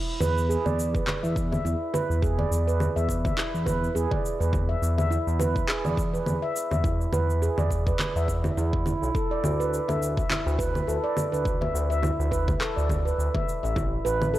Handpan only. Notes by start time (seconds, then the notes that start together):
0.20 B4
0.49 G#4
0.66 D5
0.95 B4
1.23 E5
1.52 E5
1.65 E4
1.94 B4
2.22 G#4
2.39 D5
2.67 B4
2.96 E5
3.25 E5
3.37 E4
3.66 B4
3.95 G#4
4.11 D5
4.40 B4
4.69 E5
4.98 E5
5.11 E4
5.39 B4
5.68 G#4
5.85 D5
6.13 B4
6.42 E5
6.71 E5
6.84 E4
7.13 B4
7.42 G#4
7.58 D5
7.87 B4
8.16 E5
8.45 E4
8.57 E4
8.86 E4
9.15 A4
9.31 D5
9.60 B4
9.88 E5
10.17 E5
10.30 E4
10.59 B4
10.87 A4
11.04 D5
11.32 B4
11.61 E5
11.90 E5
12.03 E4
12.31 B4
12.60 A4
12.76 D5
13.05 B4
13.35 E5
13.63 E5
13.76 E4
14.05 B4
14.34 A4